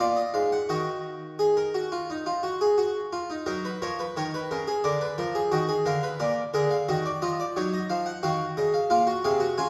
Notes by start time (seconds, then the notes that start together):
0.00 A#2 F4 D5
0.16 D#5
0.34 G#2 F5
0.52 F#5
0.69 D#3 F#4 D#5
1.39 G#4
1.57 A#4
1.74 F#4
1.92 F4
2.10 D#4
2.26 F4
2.43 F#4
2.61 G#4
2.78 F#4
3.13 F4
3.30 D#4
3.46 F#3 D#4 A#4
3.65 B4
3.82 F3 A#4 C#5
3.99 B4
4.17 D#3 A#4 C#5
4.34 B4
4.51 C#3 A#4
4.67 G#4
4.84 D3 A#4 D5
5.01 B4
5.18 F3 A#4
5.35 G#4
5.52 D#3 F#4 D#5
5.69 G#4
5.86 D3 A#4 F5
6.03 B4
6.20 A#2 A#4 D5
6.54 D3 G#4 A#4
6.71 F5
6.89 D#3 F#4 D#5
7.06 D5
7.22 F3 F4 D#5
7.40 D5
7.56 F#3 D#4 C#5
7.73 D#5
7.90 F3 F5
8.06 F#5
8.23 D#3 F#4 F5
8.57 C#3 D#5
8.74 F5
8.90 A#2 F4 F5
9.07 F#4
9.24 C3 G#4 F5
9.40 F#4
9.58 C#3 F4 G#5